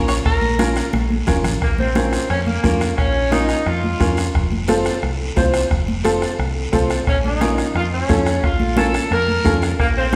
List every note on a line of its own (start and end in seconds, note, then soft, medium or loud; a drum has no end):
0.00 0.19 A#1 loud
0.00 0.15 C#4 medium
0.00 0.16 F4 medium
0.00 0.16 A#4 medium
0.08 0.13 C#5 medium
0.08 bombo rim medium
0.08 short guiro medium
0.25 0.80 A#1 medium
0.25 0.92 A#4 medium
0.25 bombo low medium
0.25 bombo rim medium
0.25 high conga soft
0.25 long guiro medium
0.42 high conga medium
0.59 0.83 C#4 medium
0.59 0.83 F4 medium
0.59 0.83 A#4 medium
0.59 bombo rim medium
0.59 high conga medium
0.59 short guiro medium
0.76 bombo rim medium
0.76 short guiro medium
0.92 1.21 A#1 medium
0.92 1.24 A4 medium
0.92 bombo rim medium
0.92 high conga medium
0.92 long guiro medium
1.10 high conga medium
1.27 1.43 F1 medium
1.27 1.51 C#4 medium
1.27 1.51 F4 medium
1.27 1.51 A#4 medium
1.27 bombo low medium
1.27 bombo rim medium
1.27 low conga medium
1.27 short guiro medium
1.44 1.60 A1 medium
1.44 bombo rim medium
1.44 low conga medium
1.44 short guiro medium
1.62 2.16 A#1 medium
1.62 1.70 A#3 medium
1.62 bombo low medium
1.62 bombo rim medium
1.62 high conga soft
1.62 long guiro medium
1.78 2.26 C4 medium
1.78 high conga medium
1.95 2.19 C#4 medium
1.95 2.20 F4 medium
1.95 2.20 A#4 medium
1.95 bombo rim medium
1.95 high conga medium
1.95 short guiro medium
2.13 bombo rim medium
2.13 short guiro medium
2.29 2.57 F2 medium
2.29 2.37 C#4 medium
2.29 bombo rim medium
2.29 high conga soft
2.29 long guiro medium
2.46 2.94 A#3 medium
2.46 high conga medium
2.63 2.91 F2 medium
2.63 2.87 C#4 medium
2.63 2.88 F4 medium
2.63 2.88 A#4 medium
2.63 bombo low medium
2.63 bombo rim medium
2.63 high conga medium
2.63 short guiro medium
2.81 bombo rim medium
2.81 short guiro medium
2.97 3.53 A#1 medium
2.97 3.29 C#4 medium
2.97 bombo low medium
2.97 bombo rim medium
2.97 high conga soft
2.97 long guiro medium
3.31 3.56 C#4 medium
3.31 3.63 D#4 medium
3.31 3.56 F4 medium
3.31 3.56 A#4 medium
3.31 bombo rim medium
3.31 high conga medium
3.31 short guiro medium
3.49 bombo rim medium
3.49 short guiro medium
3.66 3.94 F2 medium
3.66 4.17 F4 medium
3.66 bombo rim medium
3.66 high conga soft
3.66 long guiro medium
3.84 high conga medium
4.00 4.28 F2 medium
4.00 4.24 C#4 medium
4.00 4.24 F4 medium
4.00 4.24 A#4 medium
4.00 bombo low medium
4.00 bombo rim medium
4.00 high conga medium
4.00 short guiro medium
4.17 bombo rim medium
4.17 short guiro medium
4.34 4.89 F1 medium
4.34 bombo low medium
4.34 bombo rim medium
4.34 high conga soft
4.34 long guiro medium
4.52 high conga medium
4.68 4.92 C4 medium
4.68 4.92 F4 medium
4.68 4.92 A4 medium
4.68 bombo rim medium
4.68 high conga medium
4.68 short guiro medium
4.85 bombo rim medium
4.85 short guiro medium
5.02 5.30 C2 medium
5.02 bombo rim medium
5.02 high conga soft
5.02 long guiro medium
5.36 5.64 C2 medium
5.36 5.60 C4 medium
5.36 5.60 F4 medium
5.36 5.61 C5 medium
5.36 bombo low medium
5.36 bombo rim medium
5.36 high conga medium
5.36 short guiro medium
5.54 bombo rim medium
5.54 short guiro medium
5.71 6.25 F1 medium
5.71 bombo low medium
5.71 bombo rim medium
5.71 high conga soft
5.71 long guiro medium
5.88 high conga medium
6.04 6.28 C4 medium
6.04 6.28 F4 medium
6.04 6.29 A4 medium
6.04 bombo rim medium
6.04 high conga medium
6.04 short guiro medium
6.22 bombo rim medium
6.22 short guiro medium
6.39 6.66 C2 medium
6.39 bombo rim medium
6.39 high conga soft
6.39 long guiro medium
6.72 7.00 C2 medium
6.72 6.96 C4 medium
6.72 6.97 F4 medium
6.72 6.97 A4 medium
6.72 bombo low medium
6.72 bombo rim medium
6.72 high conga medium
6.72 short guiro medium
6.90 bombo rim medium
6.90 short guiro medium
7.07 7.61 A#1 medium
7.07 7.15 C#4 medium
7.07 bombo low medium
7.07 bombo rim medium
7.07 high conga soft
7.07 long guiro medium
7.24 7.72 D#4 medium
7.24 high conga medium
7.40 7.65 C#4 medium
7.40 7.65 F4 medium
7.40 7.65 A#4 medium
7.40 bombo rim medium
7.40 high conga medium
7.40 short guiro medium
7.58 bombo rim medium
7.58 short guiro medium
7.75 8.02 F2 medium
7.75 7.83 F4 medium
7.75 bombo rim medium
7.75 high conga soft
7.75 long guiro medium
7.93 8.40 C#4 medium
8.09 8.36 F2 medium
8.09 8.33 C#4 medium
8.09 8.33 F4 medium
8.09 8.33 A4 medium
8.09 bombo low medium
8.09 bombo rim medium
8.09 high conga medium
8.09 short guiro medium
8.26 bombo rim medium
8.26 short guiro medium
8.43 8.98 A#1 medium
8.43 8.78 F4 medium
8.43 bombo low medium
8.43 bombo rim medium
8.43 high conga soft
8.43 long guiro medium
8.60 high conga medium
8.77 9.01 C#4 medium
8.77 9.01 F4 medium
8.77 9.09 A4 medium
8.77 9.01 A#4 medium
8.77 bombo rim medium
8.77 high conga medium
8.77 short guiro medium
8.94 bombo rim medium
8.94 short guiro medium
9.11 9.38 F2 medium
9.11 9.59 A#4 loud
9.11 bombo rim medium
9.11 high conga soft
9.11 long guiro medium
9.28 high conga medium
9.44 9.72 F2 medium
9.44 9.69 C#4 medium
9.44 9.69 F4 medium
9.44 9.69 A4 medium
9.44 bombo low medium
9.44 bombo rim medium
9.44 high conga medium
9.44 short guiro medium
9.62 bombo rim medium
9.62 short guiro medium
9.79 10.16 A#1 medium
9.79 9.87 A#3 medium
9.79 bombo low medium
9.79 bombo rim medium
9.79 high conga soft
9.79 long guiro medium
9.96 10.16 C4 medium
10.12 10.16 C#4 medium
10.12 10.16 F4 medium
10.12 high conga medium